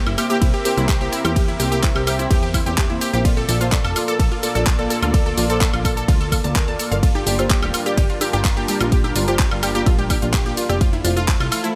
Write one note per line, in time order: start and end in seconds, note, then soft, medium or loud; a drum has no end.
0.00 0.15 A#3 medium
0.00 3.21 C4 medium
0.00 0.15 E4 medium
0.00 0.15 G4 medium
0.00 3.21 G4 medium
0.00 3.21 A#4 medium
0.00 0.15 C5 medium
0.00 3.21 E5 medium
0.06 0.16 G1 loud
0.06 0.11 E4 medium
0.06 closed hi-hat soft
0.06 high woodblock medium
0.18 0.26 A#3 medium
0.18 0.26 E4 medium
0.18 0.24 G4 loud
0.18 0.26 G4 medium
0.18 0.26 C5 medium
0.18 open hi-hat loud
0.18 cabasa medium
0.18 high woodblock medium
0.30 0.38 A#3 medium
0.30 0.38 E4 medium
0.30 0.36 G4 loud
0.30 0.38 G4 medium
0.30 0.38 C5 medium
0.30 closed hi-hat medium
0.30 cabasa soft
0.41 0.52 C2 loud
0.41 0.54 A#3 medium
0.41 0.54 E4 medium
0.41 0.46 E4 medium
0.41 0.55 G4 medium
0.41 0.55 C5 medium
0.41 kick loud
0.41 closed hi-hat medium
0.41 ride medium
0.41 cabasa soft
0.54 0.60 G4 loud
0.54 closed hi-hat soft
0.65 0.74 A#3 medium
0.65 0.74 E4 medium
0.65 0.74 G4 medium
0.65 0.72 G4 loud
0.65 0.74 C5 medium
0.65 open hi-hat loud
0.65 cabasa medium
0.77 1.09 C2 loud
0.77 0.90 A#3 medium
0.77 0.82 E4 medium
0.77 0.90 E4 medium
0.77 0.90 G4 medium
0.77 0.90 C5 loud
0.77 closed hi-hat soft
0.77 cabasa soft
0.89 0.95 G4 loud
0.89 kick loud
0.89 clap loud
0.89 closed hi-hat medium
0.89 ride medium
0.89 cabasa soft
1.01 1.22 A#3 loud
1.01 1.22 E4 medium
1.01 1.22 G4 medium
1.01 1.07 G4 loud
1.01 1.22 C5 loud
1.01 closed hi-hat soft
1.12 1.17 E4 medium
1.12 open hi-hat loud
1.12 cabasa medium
1.25 1.56 E2 medium
1.25 1.32 A#3 medium
1.25 1.32 E4 medium
1.25 1.31 G4 loud
1.25 1.32 G4 medium
1.25 1.32 C5 loud
1.25 closed hi-hat medium
1.25 cabasa soft
1.25 high woodblock medium
1.36 1.49 A#3 medium
1.36 1.49 E4 medium
1.36 1.43 G4 loud
1.36 kick loud
1.36 closed hi-hat medium
1.36 ride medium
1.36 cabasa soft
1.48 1.52 E4 medium
1.48 closed hi-hat soft
1.60 1.92 C2 medium
1.60 1.68 A#3 medium
1.60 1.68 E4 medium
1.60 1.66 G4 loud
1.60 1.68 G4 medium
1.60 1.68 C5 loud
1.60 open hi-hat loud
1.60 cabasa medium
1.72 1.81 A#3 medium
1.72 1.81 E4 medium
1.72 1.78 G4 loud
1.72 1.81 G4 medium
1.72 1.81 A#4 loud
1.72 closed hi-hat medium
1.72 cabasa soft
1.83 2.04 A#3 medium
1.83 1.88 E4 medium
1.83 2.04 E4 medium
1.83 2.04 G4 medium
1.83 2.04 C5 medium
1.83 kick loud
1.83 clap loud
1.83 closed hi-hat medium
1.83 ride medium
1.83 cabasa soft
1.95 2.27 C2 medium
1.95 2.02 G4 loud
1.95 closed hi-hat soft
1.95 high woodblock medium
2.07 2.15 A#3 medium
2.07 2.15 E4 medium
2.07 2.13 G4 loud
2.07 2.15 G4 medium
2.07 2.15 C5 medium
2.07 open hi-hat loud
2.07 cabasa medium
2.07 high woodblock medium
2.19 2.27 A#3 medium
2.19 2.23 E4 medium
2.19 2.27 E4 medium
2.19 2.27 G4 medium
2.19 2.27 C5 medium
2.19 closed hi-hat medium
2.19 cabasa soft
2.31 2.63 E2 loud
2.31 2.44 A#3 medium
2.31 2.44 E4 medium
2.31 2.37 G4 loud
2.31 2.44 G4 medium
2.31 2.44 C5 medium
2.31 kick loud
2.31 closed hi-hat soft
2.31 ride medium
2.31 cabasa soft
2.43 2.49 G4 loud
2.43 closed hi-hat soft
2.54 2.64 A#3 medium
2.54 2.59 E4 medium
2.54 2.64 E4 medium
2.54 2.64 G4 medium
2.54 2.64 C5 medium
2.54 kick medium
2.54 open hi-hat loud
2.54 cabasa medium
2.54 high woodblock medium
2.66 2.98 E2 medium
2.66 2.79 A#3 medium
2.66 2.79 E4 medium
2.66 2.72 G4 loud
2.66 2.79 G4 medium
2.66 2.79 C5 loud
2.66 closed hi-hat medium
2.66 cabasa soft
2.78 2.84 G4 loud
2.78 kick loud
2.78 clap loud
2.78 closed hi-hat medium
2.78 ride medium
2.78 cabasa soft
2.90 3.11 A#3 loud
2.90 2.94 E4 medium
2.90 3.11 E4 medium
2.90 3.11 G4 medium
2.90 3.11 C5 loud
2.90 closed hi-hat soft
3.01 3.08 G4 loud
3.01 open hi-hat loud
3.01 cabasa medium
3.13 3.45 A#1 medium
3.13 3.21 A#3 medium
3.13 3.21 E4 medium
3.13 3.20 G4 loud
3.13 3.21 G4 medium
3.13 3.21 C5 loud
3.13 closed hi-hat medium
3.13 cabasa soft
3.25 6.99 A#3 medium
3.25 3.38 A#3 medium
3.25 3.29 F4 medium
3.25 11.75 F4 medium
3.25 3.38 F4 medium
3.25 6.99 A4 medium
3.25 3.38 A4 medium
3.25 6.99 D5 medium
3.25 3.38 D5 loud
3.25 kick loud
3.25 closed hi-hat medium
3.25 ride medium
3.25 cabasa soft
3.37 3.43 A4 loud
3.37 closed hi-hat soft
3.49 3.81 A#1 loud
3.49 3.57 A#3 medium
3.49 3.57 F4 medium
3.49 3.55 A4 loud
3.49 3.57 A4 medium
3.49 3.57 D5 loud
3.49 open hi-hat loud
3.49 cabasa medium
3.61 3.70 A#3 medium
3.61 3.65 F4 medium
3.61 3.70 F4 medium
3.61 3.70 A4 medium
3.61 3.70 C5 loud
3.61 closed hi-hat medium
3.61 cabasa soft
3.72 3.79 A4 loud
3.72 kick loud
3.72 clap loud
3.72 closed hi-hat medium
3.72 ride medium
3.72 cabasa soft
3.84 3.94 F1 loud
3.84 3.91 A4 loud
3.84 closed hi-hat soft
3.84 high woodblock medium
3.96 4.04 A#3 medium
3.96 4.00 F4 medium
3.96 4.04 F4 medium
3.96 4.04 A4 medium
3.96 4.04 D5 medium
3.96 open hi-hat loud
3.96 cabasa medium
3.96 high woodblock medium
4.08 4.16 A#3 medium
4.08 4.16 F4 medium
4.08 4.14 A4 loud
4.08 4.16 A4 medium
4.08 4.16 D5 medium
4.08 closed hi-hat medium
4.08 cabasa medium
4.19 4.29 A#1 loud
4.19 4.32 A#3 medium
4.19 4.26 A4 loud
4.19 4.32 A4 medium
4.19 4.32 D5 medium
4.19 kick loud
4.19 closed hi-hat medium
4.19 ride medium
4.19 cabasa soft
4.32 4.36 F4 medium
4.32 closed hi-hat soft
4.43 4.52 A#3 medium
4.43 4.52 F4 medium
4.43 4.50 A4 loud
4.43 4.52 A4 medium
4.43 4.52 D5 medium
4.43 open hi-hat medium
4.43 cabasa medium
4.55 4.87 A#1 medium
4.55 4.68 A#3 medium
4.55 4.68 F4 medium
4.55 4.61 A4 loud
4.55 4.68 A4 medium
4.55 4.68 D5 loud
4.55 closed hi-hat medium
4.55 cabasa soft
4.67 4.71 F4 medium
4.67 kick loud
4.67 clap loud
4.67 closed hi-hat medium
4.67 ride medium
4.67 cabasa soft
4.79 5.00 A#3 loud
4.79 5.00 F4 medium
4.79 4.85 A4 loud
4.79 5.00 A4 medium
4.79 5.00 D5 loud
4.79 closed hi-hat soft
4.90 4.97 A4 loud
4.90 open hi-hat loud
4.90 cabasa medium
5.02 5.34 D2 loud
5.02 5.10 A#3 medium
5.02 5.07 F4 medium
5.02 5.10 F4 medium
5.02 5.10 A4 medium
5.02 5.10 D5 loud
5.02 closed hi-hat medium
5.02 cabasa soft
5.02 high woodblock medium
5.14 5.27 A#3 medium
5.14 5.27 F4 medium
5.14 5.21 A4 loud
5.14 5.27 A4 medium
5.14 5.27 D5 loud
5.14 kick loud
5.14 closed hi-hat medium
5.14 ride medium
5.14 cabasa soft
5.26 5.32 A4 loud
5.26 closed hi-hat soft
5.38 5.70 A#1 medium
5.38 5.46 A#3 medium
5.38 5.46 F4 medium
5.38 5.42 F4 medium
5.38 5.46 A4 medium
5.38 5.46 D5 loud
5.38 open hi-hat loud
5.38 cabasa medium
5.50 5.58 A#3 medium
5.50 5.58 F4 medium
5.50 5.58 A4 medium
5.50 5.56 A4 loud
5.50 5.58 C5 loud
5.50 closed hi-hat medium
5.50 cabasa soft
5.61 5.82 A#3 medium
5.61 5.68 A4 loud
5.61 5.82 D5 medium
5.61 kick loud
5.61 clap loud
5.61 closed hi-hat medium
5.61 ride medium
5.61 cabasa soft
5.73 6.05 A#1 medium
5.73 5.78 F4 medium
5.73 closed hi-hat soft
5.73 high woodblock medium
5.85 5.93 A#3 medium
5.85 5.93 F4 medium
5.85 5.93 A4 medium
5.85 5.91 A4 loud
5.85 5.93 D5 medium
5.85 kick medium
5.85 open hi-hat loud
5.85 cabasa medium
5.85 high woodblock medium
5.97 6.05 A#3 medium
5.97 6.05 F4 medium
5.97 6.03 A4 loud
5.97 6.05 A4 medium
5.97 6.05 D5 medium
5.97 closed hi-hat medium
5.97 cabasa medium
6.08 6.41 D2 loud
6.08 6.21 A#3 medium
6.08 6.13 F4 medium
6.08 6.21 F4 medium
6.08 6.21 A4 medium
6.08 6.21 D5 medium
6.08 kick loud
6.08 closed hi-hat medium
6.08 ride medium
6.08 cabasa soft
6.21 6.27 A4 loud
6.21 closed hi-hat soft
6.32 6.41 A#3 medium
6.32 6.41 F4 medium
6.32 6.35 A4 medium
6.32 6.41 A4 medium
6.32 6.41 D5 medium
6.32 kick medium
6.32 open hi-hat loud
6.32 cabasa medium
6.32 high woodblock medium
6.44 6.76 D2 medium
6.44 6.57 A#3 medium
6.44 6.57 F4 medium
6.44 6.57 A4 medium
6.44 6.57 D5 loud
6.44 6.48 A5 medium
6.44 closed hi-hat medium
6.44 cabasa soft
6.56 6.62 A#4 medium
6.56 kick loud
6.56 clap loud
6.56 closed hi-hat medium
6.56 ride medium
6.56 cabasa soft
6.68 6.89 A#3 loud
6.68 6.89 F4 medium
6.68 6.89 A4 medium
6.68 6.89 D5 loud
6.68 6.70 A5 medium
6.68 closed hi-hat soft
6.79 6.84 A4 medium
6.79 open hi-hat loud
6.79 cabasa medium
6.91 7.23 G1 medium
6.91 6.99 A#3 loud
6.91 6.99 F4 medium
6.91 6.99 A4 medium
6.91 6.99 D5 loud
6.91 6.94 F5 medium
6.91 closed hi-hat medium
6.91 cabasa soft
7.03 10.77 G3 medium
7.03 7.16 A#3 medium
7.03 10.77 D4 medium
7.03 7.07 F4 medium
7.03 7.16 F4 medium
7.03 10.77 A#4 medium
7.03 kick loud
7.03 closed hi-hat medium
7.03 ride medium
7.03 cabasa soft
7.03 high woodblock soft
7.15 7.21 G4 loud
7.15 closed hi-hat soft
7.15 high conga medium
7.27 7.59 G1 loud
7.27 7.35 A#3 medium
7.27 7.35 F4 medium
7.27 7.33 G4 loud
7.27 7.35 G4 medium
7.27 7.35 D5 loud
7.27 open hi-hat loud
7.27 cabasa medium
7.39 7.48 A#3 medium
7.39 7.43 F4 medium
7.39 7.48 F4 medium
7.39 7.48 G4 medium
7.39 7.48 C5 loud
7.39 closed hi-hat medium
7.39 cabasa soft
7.39 high woodblock medium
7.50 7.57 G4 loud
7.50 kick loud
7.50 clap loud
7.50 closed hi-hat medium
7.50 ride medium
7.62 7.72 D1 loud
7.62 7.69 G4 loud
7.62 closed hi-hat soft
7.62 high woodblock medium
7.74 7.82 A#3 medium
7.74 7.82 F4 medium
7.74 7.78 F4 medium
7.74 7.82 G4 medium
7.74 7.82 D5 medium
7.74 open hi-hat loud
7.74 cabasa medium
7.74 high woodblock medium
7.86 7.94 A#3 medium
7.86 7.94 F4 medium
7.86 7.94 G4 medium
7.86 7.92 G4 loud
7.86 7.94 D5 medium
7.86 closed hi-hat medium
7.86 cabasa soft
7.86 high woodblock soft
7.97 8.07 G1 loud
7.97 8.11 A#3 medium
7.97 8.11 G4 medium
7.97 8.04 G4 loud
7.97 8.10 D5 medium
7.97 kick loud
7.97 closed hi-hat medium
7.97 ride medium
7.97 cabasa soft
8.10 8.14 F4 medium
8.10 closed hi-hat soft
8.21 8.30 A#3 medium
8.21 8.30 F4 medium
8.21 8.30 G4 medium
8.21 8.28 G4 loud
8.21 8.30 D5 medium
8.21 open hi-hat loud
8.21 high conga medium
8.21 cabasa medium
8.21 high woodblock medium
8.33 8.65 G1 loud
8.33 8.46 A#3 medium
8.33 8.46 F4 medium
8.33 8.46 G4 medium
8.33 8.40 G4 loud
8.33 8.46 D5 loud
8.33 closed hi-hat medium
8.33 cabasa soft
8.45 8.49 F4 medium
8.45 kick loud
8.45 clap loud
8.45 closed hi-hat medium
8.45 ride medium
8.45 cabasa soft
8.57 8.78 A#3 loud
8.57 8.78 F4 medium
8.57 8.78 G4 medium
8.57 8.63 G4 loud
8.57 8.78 D5 loud
8.57 closed hi-hat soft
8.68 8.75 G4 loud
8.68 open hi-hat loud
8.68 low conga medium
8.68 cabasa medium
8.68 high woodblock soft
8.81 9.12 A#1 loud
8.81 8.88 A#3 medium
8.81 8.88 F4 medium
8.81 8.85 F4 medium
8.81 8.88 G4 medium
8.81 8.88 D5 loud
8.81 closed hi-hat medium
8.81 cabasa soft
8.81 high woodblock medium
8.92 9.05 A#3 medium
8.92 9.05 F4 medium
8.92 9.05 G4 medium
8.92 8.99 G4 loud
8.92 kick loud
8.92 closed hi-hat medium
8.92 ride medium
8.92 cabasa soft
9.04 9.10 G4 loud
9.04 closed hi-hat soft
9.04 high conga medium
9.04 high woodblock medium
9.16 9.48 G1 medium
9.16 9.24 A#3 medium
9.16 9.24 F4 medium
9.16 9.20 F4 medium
9.16 9.24 G4 medium
9.16 9.24 D5 loud
9.16 open hi-hat loud
9.16 cabasa medium
9.28 9.37 A#3 medium
9.28 9.37 F4 medium
9.28 9.34 G4 loud
9.28 9.37 G4 medium
9.28 9.37 C5 loud
9.28 closed hi-hat medium
9.28 cabasa soft
9.39 9.46 G4 loud
9.39 kick loud
9.39 clap loud
9.39 closed hi-hat medium
9.39 ride medium
9.39 cabasa soft
9.51 9.83 G1 medium
9.51 9.56 F4 medium
9.51 closed hi-hat soft
9.51 high woodblock soft
9.51 high woodblock medium
9.63 9.71 A#3 medium
9.63 9.71 F4 medium
9.63 9.69 G4 loud
9.63 9.71 G4 medium
9.63 9.71 D5 medium
9.63 open hi-hat loud
9.63 cabasa medium
9.63 high woodblock medium
9.75 9.83 A#3 medium
9.75 9.83 F4 medium
9.75 9.81 G4 loud
9.75 9.83 G4 medium
9.75 9.83 D5 medium
9.75 closed hi-hat medium
9.75 cabasa soft
9.86 10.19 A#1 loud
9.86 9.99 A#3 medium
9.86 9.91 F4 medium
9.86 9.99 G4 medium
9.86 9.99 D5 medium
9.86 kick loud
9.86 closed hi-hat medium
9.86 ride medium
9.86 cabasa soft
9.86 high woodblock medium
9.99 10.05 G4 loud
9.99 closed hi-hat soft
9.99 low conga medium
10.10 10.19 A#3 medium
10.10 10.19 F4 medium
10.10 10.17 G4 loud
10.10 10.19 G4 medium
10.10 10.19 D5 medium
10.10 kick medium
10.10 open hi-hat loud
10.10 high conga medium
10.10 cabasa medium
10.10 high woodblock medium
10.22 10.54 A#1 medium
10.22 10.35 A#3 medium
10.22 10.35 F4 medium
10.22 10.26 F4 medium
10.22 10.35 G4 medium
10.22 10.35 D5 loud
10.22 closed hi-hat medium
10.22 cabasa soft
10.34 10.40 G4 loud
10.34 kick loud
10.34 clap loud
10.34 closed hi-hat medium
10.34 ride medium
10.34 cabasa soft
10.34 high woodblock soft
10.46 10.67 A#3 loud
10.46 10.67 F4 loud
10.46 10.67 G4 medium
10.46 10.52 G4 loud
10.46 10.67 D5 loud
10.46 closed hi-hat soft
10.57 10.62 F4 medium
10.57 open hi-hat loud
10.57 cabasa medium
10.69 11.01 F1 medium
10.69 10.77 A#3 medium
10.69 10.77 F4 medium
10.69 10.76 G4 loud
10.69 10.77 G4 medium
10.69 10.77 D5 loud
10.69 closed hi-hat medium
10.69 cabasa soft
10.69 high woodblock medium
10.81 10.94 A3 medium
10.81 10.94 E4 medium
10.81 11.75 E4 medium
10.81 10.87 F4 loud
10.81 10.94 F4 medium
10.81 11.75 A4 loud
10.81 10.94 C5 loud
10.81 kick loud
10.81 closed hi-hat medium
10.81 ride medium
10.81 cabasa soft
10.93 10.97 E4 medium
10.93 closed hi-hat soft
10.93 high conga medium
11.04 11.37 F1 loud
11.04 11.13 A3 loud
11.04 11.13 E4 medium
11.04 11.11 F4 loud
11.04 11.13 F4 medium
11.04 11.13 C5 loud
11.04 open hi-hat loud
11.04 cabasa medium
11.17 11.26 A3 medium
11.17 11.26 E4 medium
11.17 11.23 F4 loud
11.17 11.25 F4 medium
11.17 11.26 A4 loud
11.17 closed hi-hat medium
11.17 cabasa soft
11.17 high woodblock soft
11.28 11.49 A3 medium
11.28 11.32 E4 medium
11.28 11.49 E4 medium
11.28 11.49 F4 medium
11.28 11.49 C5 medium
11.28 kick loud
11.28 clap loud
11.28 closed hi-hat medium
11.28 ride medium
11.28 cabasa soft
11.40 11.50 C2 loud
11.40 11.46 F4 loud
11.40 closed hi-hat soft
11.40 high woodblock medium
11.52 11.60 A3 medium
11.52 11.60 E4 medium
11.52 11.58 F4 loud
11.52 11.60 F4 medium
11.52 11.60 C5 medium
11.52 open hi-hat loud
11.52 cabasa medium
11.52 high woodblock medium
11.64 11.72 A3 medium
11.64 11.68 E4 medium
11.64 11.72 E4 medium
11.64 11.72 F4 medium
11.64 11.72 C5 medium
11.64 closed hi-hat medium
11.64 cabasa soft